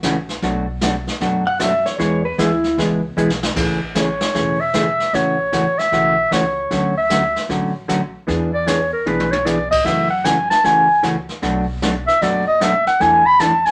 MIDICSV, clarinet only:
0, 0, Header, 1, 2, 480
1, 0, Start_track
1, 0, Key_signature, 3, "major"
1, 0, Tempo, 392927
1, 522, Time_signature, 4, 2, 24, 8
1, 16749, End_track
2, 0, Start_track
2, 0, Title_t, "Clarinet"
2, 0, Program_c, 0, 71
2, 4855, Note_on_c, 0, 73, 88
2, 5625, Note_on_c, 0, 76, 111
2, 5643, Note_off_c, 0, 73, 0
2, 6284, Note_on_c, 0, 73, 82
2, 6302, Note_off_c, 0, 76, 0
2, 7068, Note_on_c, 0, 76, 110
2, 7086, Note_off_c, 0, 73, 0
2, 7733, Note_on_c, 0, 73, 78
2, 7752, Note_off_c, 0, 76, 0
2, 8511, Note_off_c, 0, 73, 0
2, 8518, Note_on_c, 0, 76, 90
2, 9113, Note_off_c, 0, 76, 0
2, 10432, Note_on_c, 0, 74, 103
2, 10601, Note_on_c, 0, 73, 90
2, 10619, Note_off_c, 0, 74, 0
2, 10894, Note_off_c, 0, 73, 0
2, 10901, Note_on_c, 0, 70, 89
2, 11084, Note_on_c, 0, 71, 90
2, 11102, Note_off_c, 0, 70, 0
2, 11376, Note_on_c, 0, 73, 95
2, 11394, Note_off_c, 0, 71, 0
2, 11553, Note_on_c, 0, 74, 98
2, 11571, Note_off_c, 0, 73, 0
2, 11852, Note_off_c, 0, 74, 0
2, 11859, Note_on_c, 0, 75, 103
2, 12033, Note_on_c, 0, 76, 91
2, 12052, Note_off_c, 0, 75, 0
2, 12334, Note_off_c, 0, 76, 0
2, 12342, Note_on_c, 0, 78, 99
2, 12523, Note_on_c, 0, 80, 95
2, 12541, Note_off_c, 0, 78, 0
2, 12820, Note_off_c, 0, 80, 0
2, 12827, Note_on_c, 0, 81, 114
2, 13009, Note_on_c, 0, 80, 98
2, 13028, Note_off_c, 0, 81, 0
2, 13482, Note_off_c, 0, 80, 0
2, 14748, Note_on_c, 0, 76, 106
2, 14930, Note_on_c, 0, 74, 97
2, 14948, Note_off_c, 0, 76, 0
2, 15231, Note_off_c, 0, 74, 0
2, 15239, Note_on_c, 0, 75, 96
2, 15430, Note_on_c, 0, 76, 89
2, 15448, Note_off_c, 0, 75, 0
2, 15718, Note_off_c, 0, 76, 0
2, 15726, Note_on_c, 0, 78, 106
2, 15894, Note_on_c, 0, 80, 105
2, 15912, Note_off_c, 0, 78, 0
2, 16195, Note_on_c, 0, 83, 120
2, 16213, Note_off_c, 0, 80, 0
2, 16368, Note_on_c, 0, 81, 106
2, 16387, Note_off_c, 0, 83, 0
2, 16680, Note_on_c, 0, 80, 103
2, 16698, Note_off_c, 0, 81, 0
2, 16749, Note_off_c, 0, 80, 0
2, 16749, End_track
0, 0, End_of_file